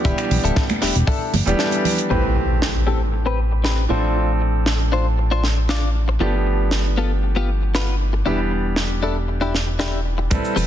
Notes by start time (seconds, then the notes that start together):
0.04 E1 E3 G3 B3 D4 E4 G4, kick, closed hi-hat
0.18 finger snap, closed hi-hat
0.31 B1, muted clean electric guitar stroke, open hi-hat, low conga
0.44 D1 D4 E4 A4, closed hi-hat
0.56 kick, snare, closed hi-hat
0.69 finger snap, closed hi-hat, high conga
0.82 E1 D4 E4 G4, snare, open hi-hat
0.95 E1, closed hi-hat
1.07 D4 E4 A4, kick, open hi-hat
1.34 G1, open hi-hat, high conga, low conga
1.46 E1 E3 G3 B3 D4 G4, closed hi-hat
1.59 D4 E4 A4, snare, closed hi-hat
1.72 closed hi-hat
1.85 open hi-hat, low conga
1.98 closed hi-hat
2.09 A1 E3 A3 C4 G4 B4, impact
2.36 muted clean electric guitar stroke
2.62 snare
2.87 C4 G4 A4
3.13 muted clean electric guitar stroke
3.26 C4 G4 B4
3.52 muted clean electric guitar stroke
3.64 C4 G4 B4, snare
3.89 A1 F3 A3 C4 D4 F4 A4 C5
4.41 muted clean electric guitar stroke
4.66 snare
4.92 D4 F4 C5
5.18 muted clean electric guitar stroke
5.31 D4 F4 C5
5.44 snare
5.57 muted clean electric guitar stroke
5.69 D4 F4 D5, snare
6.08 muted clean electric guitar stroke
6.20 G1 F3 A3 B3 D4 F4 G4 A4
6.46 muted clean electric guitar stroke
6.71 snare
6.97 B3 F4 A4
7.23 muted clean electric guitar stroke
7.36 B3 F4 G4
7.62 muted clean electric guitar stroke
7.75 B3 F4 B4, snare
8.13 muted clean electric guitar stroke
8.25 E1 E3 G3 B3 D4 E4 G4
8.51 muted clean electric guitar stroke
8.76 snare
9.03 D4 E4 A4
9.28 muted clean electric guitar stroke
9.41 D4 E4 G4
9.55 snare
9.67 muted clean electric guitar stroke
9.79 D4 E4 G4, snare
10.18 muted clean electric guitar stroke
10.30 A1 G3 C4 E4 A4 B4, kick, closed hi-hat, cabasa
10.44 cabasa
10.56 E1 C4 G4 A4 B4, open hi-hat, low conga, cabasa